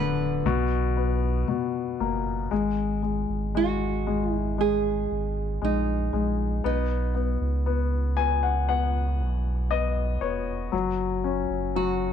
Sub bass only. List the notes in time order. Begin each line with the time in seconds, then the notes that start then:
Already playing: D1
0.45 B1
2.00 F#1
2.52 G#1
3.29 G#1
5.11 G#1
5.62 A#1
6.13 A#1
6.65 B1
7.41 C#2
9.20 B1
10.21 E1
10.73 F#1
11.50 F#1